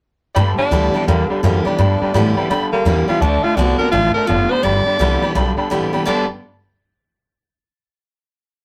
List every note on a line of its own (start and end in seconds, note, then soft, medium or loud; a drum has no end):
0.35 0.56 G2 medium
0.35 0.58 G2 medium
0.35 1.05 G2 medium
0.35 0.56 D3 loud
0.35 0.49 D5 loud
0.35 0.49 G5 loud
0.35 0.49 B5 loud
0.58 0.71 G2 medium
0.58 0.71 D3 medium
0.58 1.06 D4 loud
0.58 0.66 D5 medium
0.58 0.66 G5 medium
0.58 0.66 B5 medium
0.58 muted upright bass stroke medium
0.71 0.93 D2 medium
0.71 0.92 G2 medium
0.71 0.93 D3 medium
0.71 0.92 E3 medium
0.71 0.93 G3 medium
0.71 0.94 B3 loud
0.71 0.93 G4 loud
0.71 0.85 D5 medium
0.71 0.85 G5 medium
0.71 0.85 B5 medium
0.93 1.06 G2 medium
0.93 1.06 E3 medium
0.93 1.08 B3 soft
0.93 1.07 G4 medium
0.93 1.02 D5 medium
0.93 1.02 G5 medium
0.93 1.02 B5 medium
0.93 muted upright bass stroke medium
1.07 1.29 E2 medium
1.07 1.28 G2 medium
1.07 1.28 D3 medium
1.07 1.42 D3 medium
1.07 1.29 A#3 medium
1.07 1.21 D5 medium
1.07 1.21 G5 medium
1.07 1.21 B5 medium
1.29 1.42 G2 medium
1.29 1.42 D3 medium
1.29 1.43 G3 medium
1.29 1.38 D5 medium
1.29 1.38 G5 medium
1.29 1.38 B5 medium
1.29 muted upright bass stroke medium
1.43 1.65 F#2 loud
1.43 1.63 G2 medium
1.43 1.64 D3 medium
1.43 1.64 E3 medium
1.43 1.65 G3 medium
1.43 1.68 A#3 medium
1.43 1.65 B3 loud
1.43 1.64 G4 medium
1.43 1.56 D5 medium
1.43 1.57 G5 medium
1.43 1.57 B5 medium
1.65 1.78 G2 medium
1.65 1.78 E3 medium
1.65 1.79 B3 soft
1.65 2.35 D4 loud
1.65 1.78 G4 medium
1.65 1.73 D5 medium
1.65 1.74 G5 medium
1.65 1.74 B5 medium
1.65 muted upright bass stroke medium
1.78 2.00 G2 medium
1.78 2.47 G2 medium
1.78 1.99 G2 medium
1.78 1.99 D3 medium
1.78 1.92 D5 medium
1.78 1.92 G5 medium
1.78 1.92 B5 loud
2.01 2.13 G2 medium
2.01 2.14 D3 medium
2.01 2.09 D5 medium
2.01 2.09 G5 medium
2.01 2.10 B5 medium
2.01 muted upright bass stroke medium
2.14 2.35 G2 medium
2.14 2.36 A2 medium
2.14 2.49 D3 medium
2.14 2.35 E3 loud
2.14 2.49 G3 loud
2.14 2.49 B3 medium
2.14 2.50 G4 loud
2.14 2.27 D5 medium
2.14 2.28 G5 medium
2.14 2.28 B5 loud
2.36 2.49 G2 medium
2.36 2.49 E3 medium
2.36 2.44 D5 medium
2.36 2.45 G5 medium
2.36 2.45 B5 loud
2.36 muted upright bass stroke medium
2.50 2.71 G2 medium
2.50 2.70 G2 medium
2.50 2.84 D3 medium
2.50 2.71 D3 medium
2.50 2.63 D5 loud
2.50 2.64 G5 loud
2.50 2.64 B5 loud
2.72 2.85 G2 medium
2.72 2.85 D3 medium
2.72 3.07 A#3 loud
2.72 2.81 D5 medium
2.72 2.81 G5 medium
2.72 2.81 B5 medium
2.72 muted upright bass stroke soft
2.85 3.07 E2 loud
2.85 3.06 G2 medium
2.85 3.07 D3 medium
2.85 3.06 E3 medium
2.85 3.07 G3 medium
2.85 3.08 B3 medium
2.85 3.07 G4 medium
2.85 2.99 D5 medium
2.85 2.99 G5 medium
2.85 2.99 B5 medium
3.07 3.20 G2 medium
3.07 3.20 E3 medium
3.07 3.22 B3 soft
3.07 3.23 F4 loud
3.07 3.21 G4 medium
3.07 3.16 D5 medium
3.07 3.16 G5 medium
3.07 3.16 B5 medium
3.07 muted upright bass stroke medium
3.20 3.42 D2 medium
3.20 3.41 D3 medium
3.20 3.56 D3 medium
3.20 3.42 A3 medium
3.20 3.45 D4 loud
3.20 3.34 D5 medium
3.20 3.35 F#5 medium
3.20 3.35 A5 loud
3.43 3.56 D3 medium
3.43 3.56 A3 medium
3.43 3.57 F4 medium
3.43 3.52 D5 medium
3.43 3.51 F#5 medium
3.43 3.52 A5 medium
3.56 3.78 C2 medium
3.56 3.77 D3 medium
3.56 3.78 D3 medium
3.56 3.79 A3 medium
3.56 3.77 B3 loud
3.56 3.79 C4 medium
3.56 3.78 D4 loud
3.56 3.78 F#4 loud
3.56 3.70 D5 medium
3.56 3.70 F#5 medium
3.56 3.71 A5 medium
3.78 3.91 D3 medium
3.78 3.92 B3 medium
3.78 3.93 C4 soft
3.78 3.92 F#4 medium
3.78 3.91 A#4 medium
3.78 3.87 D5 medium
3.78 3.88 F#5 medium
3.78 3.88 A5 medium
3.91 4.14 A1 loud
3.91 4.27 B2 medium
3.91 4.13 D3 medium
3.91 4.13 A3 loud
3.91 4.14 F4 loud
3.91 4.06 D5 medium
3.91 4.06 F#5 medium
3.91 4.06 A5 loud
4.14 4.27 D3 medium
4.14 4.27 A3 medium
4.14 4.29 A#4 medium
4.14 4.23 D5 medium
4.14 4.24 F#5 medium
4.14 4.24 A5 medium
4.27 4.50 F#1 loud
4.27 4.62 A2 medium
4.27 4.48 D3 medium
4.27 4.48 B3 loud
4.27 4.52 F4 medium
4.27 4.42 D5 medium
4.27 4.42 F#5 medium
4.27 4.42 A5 medium
4.50 4.63 D3 medium
4.50 4.63 B3 medium
4.50 4.65 C5 loud
4.50 4.58 D5 medium
4.50 4.59 F#5 medium
4.50 4.59 B5 medium
4.63 4.85 G1 medium
4.63 5.32 G2 medium
4.63 4.84 G2 medium
4.63 4.84 D3 medium
4.63 5.33 D5 loud
4.63 4.77 D5 medium
4.63 4.77 G5 medium
4.63 4.78 B5 loud
4.86 4.98 G2 medium
4.86 4.98 D3 medium
4.86 4.94 D5 medium
4.86 4.95 G5 medium
4.86 4.95 B5 medium
4.99 5.21 C2 medium
4.99 5.20 G2 medium
4.99 5.21 D3 medium
4.99 5.20 E3 medium
4.99 5.21 G3 medium
4.99 5.22 B3 loud
4.99 5.21 G4 medium
4.99 5.13 D5 medium
4.99 5.14 G5 medium
4.99 5.14 B5 medium
5.21 5.34 G2 medium
5.21 5.34 E3 loud
5.21 5.36 B3 soft
5.21 5.35 G4 medium
5.21 5.30 D5 medium
5.21 5.30 G5 medium
5.21 5.30 B5 loud
5.21 muted upright bass stroke medium
5.35 5.57 B1 medium
5.35 5.55 G2 medium
5.35 5.69 D3 medium
5.35 5.55 D3 loud
5.35 5.49 D5 loud
5.35 5.49 G5 loud
5.35 5.49 B5 loud
5.57 5.70 G2 medium
5.57 5.70 D3 medium
5.57 5.65 D5 medium
5.57 5.66 G5 medium
5.57 5.66 B5 medium
5.57 muted upright bass stroke medium
5.70 5.92 A1 medium
5.70 5.91 G2 medium
5.70 5.92 D3 medium
5.70 5.91 E3 medium
5.70 5.92 G3 medium
5.70 5.93 B3 medium
5.70 5.92 G4 medium
5.70 5.84 D5 medium
5.70 5.84 G5 medium
5.70 5.84 B5 medium
5.93 6.05 G2 medium
5.93 6.06 E3 medium
5.93 6.06 B3 soft
5.93 6.06 G4 medium
5.93 6.01 D5 medium
5.93 6.01 G5 medium
5.93 6.01 B5 loud
5.93 muted upright bass stroke soft
6.05 6.27 G1 medium
6.05 6.24 G2 medium
6.05 6.25 G2 loud
6.05 6.24 B2 medium
6.05 6.24 D3 medium
6.05 6.25 D3 loud
6.05 6.24 G3 medium
6.05 6.25 G3 loud
6.05 6.25 B3 medium
6.05 6.25 B3 loud
6.05 6.25 D4 loud
6.05 6.25 G4 medium
6.05 6.27 D5 medium
6.05 6.27 G5 medium
6.05 6.27 B5 medium